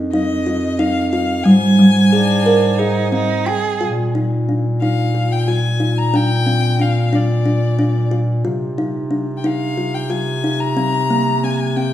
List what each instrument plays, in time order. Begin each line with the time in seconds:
Already playing: bass clarinet F2
0.12 kalimba D#4, violin D#5
0.46 kalimba F4
0.79 kalimba D#4, violin F5
1.12 kalimba F4, violin F5
1.44 bass clarinet G#2, kalimba G3, violin G#5
1.79 kalimba G3
2.12 cello D4, kalimba G#4
2.46 kalimba A#4
2.78 cello D#4, kalimba G#4
3.12 kalimba C4, cello D#4
3.46 cello G#4, kalimba G5
3.81 bass clarinet A#2, kalimba F4
4.15 kalimba D#4
4.49 kalimba D4
4.81 kalimba D#4, violin F5
5.15 kalimba F4
5.32 violin G5
5.48 kalimba F4, violin G#5
5.80 kalimba D#4
5.98 violin A#5
6.14 kalimba D4, violin G5
6.46 kalimba C4
6.79 kalimba D4, violin F5
7.13 kalimba D4, violin D5
7.46 kalimba D4
7.79 kalimba D4
8.11 kalimba F4
8.45 bass clarinet C3, kalimba F4
8.78 kalimba D#4
9.11 kalimba D4
9.37 violin G5
9.44 kalimba D#4, violin F5
9.77 kalimba F4
9.95 violin G5
10.10 kalimba F4, violin G#5
10.44 kalimba D#4
10.60 violin A#5
10.77 kalimba C4
11.10 kalimba A#3
11.44 kalimba C4, violin G#5
11.77 kalimba C4, violin G5